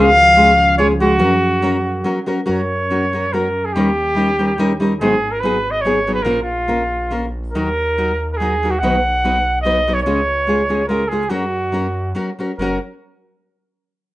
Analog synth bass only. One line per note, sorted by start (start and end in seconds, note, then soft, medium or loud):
0.00 1.22 C#2 loud
1.21 2.04 F#2 loud
2.49 3.76 F#2 medium
3.75 5.02 D#2 medium
5.00 6.28 G#1 medium
6.27 7.56 A#1 medium
7.54 8.83 D#2 medium
8.81 10.06 B1 medium
10.05 11.32 C#2 medium
11.31 12.13 F#2 medium
12.58 12.79 F#1 medium